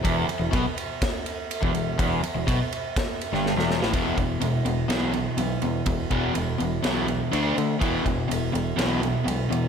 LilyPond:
<<
  \new Staff \with { instrumentName = "Overdriven electric guitar" } { \clef bass \time 4/4 \key e \minor \tempo 4 = 124 e,8 r16 e,16 b,16 r2 e,16 e,8 | e,8 r16 e,16 b,16 r4. g,8 e,8 a,16 | <e, b, e>8 <e, b,>8 <e, b,>8 <e, b,>8 <e, b, e>8 <e, b,>8 <e, b,>8 <e, b,>8 | <e, b,>8 <e, b, e>8 <e, b,>8 <e, b,>8 <e, b, e>8 <e, b,>8 <d a d'>8 <d a>8 |
<e, b, e>8 <e, b,>8 <e, b,>8 <e, b,>8 <e, b, e>8 <e, b,>8 <e, b,>8 <e, b,>8 | }
  \new Staff \with { instrumentName = "Overdriven electric guitar" } { \clef bass \time 4/4 \key e \minor e,8 r16 e,16 b,16 r2 e,16 e,8 | e,8 r16 e,16 b,16 r4. g,8 e,8 a,16 | <e, b, e>8 <e, b,>8 <e, b,>8 <e, b,>8 <e, b, e>8 <e, b,>8 <e, b,>8 <e, b,>8 | <e, b,>8 <e, b, e>8 <e, b,>8 <e, b,>8 <e, b, e>8 <e, b,>8 <d a d'>8 <d a>8 |
<e, b, e>8 <e, b,>8 <e, b,>8 <e, b,>8 <e, b, e>8 <e, b,>8 <e, b,>8 <e, b,>8 | }
  \new Staff \with { instrumentName = "Picked electric bass" } { \clef bass \time 4/4 \key e \minor e,,8 r16 e,,16 b,,16 r2 e,,16 e,,8 | e,,8 r16 e,,16 b,,16 r4. g,,8 e,,8 a,,16 | e,,8 e,,8 e,,8 e,,8 b,,4 b,,8 e,8 | e,,8 e,,8 e,,8 e,,8 b,,4 d,8 d8 |
e,,8 e,,8 e,,8 e,,8 b,,4 b,,8 e,8 | }
  \new DrumStaff \with { instrumentName = "Drums" } \drummode { \time 4/4 <bd cymr>8 cymr8 <bd cymr>8 cymr8 <bd cymr sn>8 cymr8 cymr16 bd16 cymr8 | <bd cymr>8 cymr8 <bd cymr>8 cymr8 <bd cymr sn>8 cymr16 sn16 sn16 sn16 sn16 sn16 | <bd cymr>8 <bd cymr>8 cymr8 cymr8 <cymr sn>8 cymr8 cymr8 cymr8 | <bd cymr>8 <bd cymr>8 cymr8 cymr8 <cymr sn>8 cymr8 cymr8 cymr8 |
<bd cymr>8 <bd cymr>8 cymr8 cymr8 <cymr sn>8 cymr8 cymr8 cymr8 | }
>>